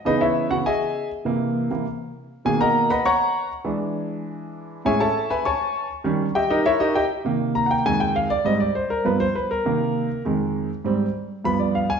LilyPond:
<<
  \new Staff \with { instrumentName = "Grand piano" } { \time 4/4 \key dis \phrygian \tempo 4 = 200 <dis' gis' b' dis''>8 <e' b' cis'' e''>4 <fis' fis''>8 <gis' dis'' e'' gis''>4. r8 | r1 | <gis' gis''>8 <ais' dis'' fis'' ais''>4 <b' dis'' fis'' b''>8 <cis'' fis'' ais'' cis'''>4. r8 | r1 |
<gis' cis'' e'' gis''>8 <a' cis'' e'' a''>4 <b' e'' gis'' b''>8 <cis'' gis'' a'' cis'''>4. r8 | r4 <g' dis'' e'' g''>8 <dis' g' ais' dis''>8 <e' ais' cis'' e''>8 <dis' g' ais' dis''>8 <g' dis'' e'' g''>8 r8 | \key c \minor r4 bes''8 <fis'' g''>8 aes''8 g''8 f''8 d''8 | ees''8 d''8 c''8 bes'8 b'8 c''8 b'8 bes'8~ |
bes'2 r2 | r2 b''8 d''8 f''8 aes''8 | }
  \new Staff \with { instrumentName = "Grand piano" } { \clef bass \time 4/4 \key dis \phrygian <cis e b>4. <cis e b>8 r2 | <c e bes>4. <c e bes>8 r2 | <b, dis ais>4. r2 r8 | <e gis d'>1 |
<a, gis cis'>8 r2. r8 | <dis g cis'>8 r2. r8 | \key c \minor <c ees bes>2 <f, ees aes>4. r8 | <aes, g c'>8 r4. <g, f b>8 r4. |
<c ees bes>4. r8 <f, ees aes>4. r8 | <aes, g c'>8 r4. <g, f b>4. r8 | }
>>